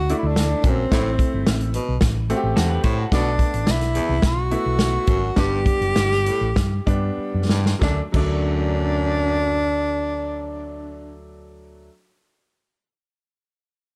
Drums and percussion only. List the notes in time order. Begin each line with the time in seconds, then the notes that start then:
0.09 closed hi-hat
0.36 snare, closed hi-hat
0.64 kick, closed hi-hat
0.92 kick, snare, closed hi-hat
1.19 kick, closed hi-hat
1.47 snare, closed hi-hat
1.60 closed hi-hat
1.74 closed hi-hat
2.01 kick, snare, closed hi-hat
2.30 closed hi-hat
2.57 snare, closed hi-hat
2.83 kick, closed hi-hat
3.12 kick, snare, closed hi-hat
3.39 kick, closed hi-hat
3.54 closed hi-hat
3.67 snare, closed hi-hat
3.81 snare, closed hi-hat
3.95 closed hi-hat
4.22 kick, snare, closed hi-hat
4.51 closed hi-hat
4.79 snare, closed hi-hat
5.07 kick, closed hi-hat
5.36 kick, snare, closed hi-hat
5.66 kick, closed hi-hat
5.82 closed hi-hat
5.96 snare, closed hi-hat
6.11 snare
6.26 closed hi-hat
6.56 kick, snare, closed hi-hat
6.87 kick, closed hi-hat
7.49 snare
7.66 snare
7.81 kick, snare
8.14 kick, crash